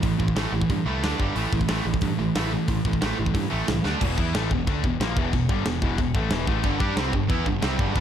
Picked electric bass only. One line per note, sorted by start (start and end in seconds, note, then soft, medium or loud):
0.03 0.13 A1 medium
0.20 0.30 A1 medium
0.36 0.46 A1 medium
0.53 0.63 A1 loud
0.69 0.80 G2 loud
0.86 1.02 C2 medium
1.02 1.13 D2 medium
1.20 1.30 G1 medium
1.36 1.46 A1 medium
1.53 1.63 A1 medium
1.69 1.79 A1 medium
1.85 1.96 A1 loud
2.02 2.12 G2 loud
2.19 2.29 A1 medium
2.36 2.56 A1 medium
2.68 2.78 A1 medium
2.85 2.95 A1 medium
3.03 3.12 A1 loud
3.19 3.29 A1 loud
3.34 3.45 G2 medium
3.53 3.62 A1 medium
3.69 3.78 C2 medium
3.85 3.95 D2 medium
4.01 4.16 E1 loud
4.18 4.33 E2 medium
4.35 4.50 A1 loud
4.51 4.66 E1 medium
4.67 4.82 D2 medium
4.83 4.99 E1 medium
5.00 5.15 A#1 medium
5.17 5.32 E1 medium
5.33 5.48 E1 medium
5.49 5.64 G1 medium
5.66 5.81 E1 medium
5.82 5.97 E1 loud
5.98 6.14 E1 medium
6.15 6.29 A1 loud
6.30 6.46 E1 loud
6.48 6.63 A1 loud
6.64 6.79 G1 medium
6.80 6.96 G2 medium
6.97 7.12 C2 medium
7.13 7.29 G1 medium
7.30 7.45 E2 medium
7.46 7.61 G1 medium
7.63 7.78 C2 loud
7.79 7.94 G1 loud
7.96 8.00 E2 loud